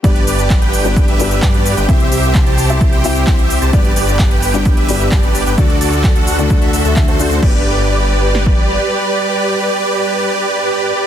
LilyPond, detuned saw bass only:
\new Staff \with { instrumentName = "Detuned saw bass" } { \clef bass \time 4/4 \key g \major \tempo 4 = 130 g,,8 g,,8. g,,4 g,,8. g,8. g,,16 | c,8 c,8. c,4 c,8. c,8. c,16 | g,,8 g,,8. g,,4 g,,8. g,,8. g,,16 | d,8 d,8. d,4 d,16 d,16 d,8 d,8. |
g,,2. r4 | r1 | }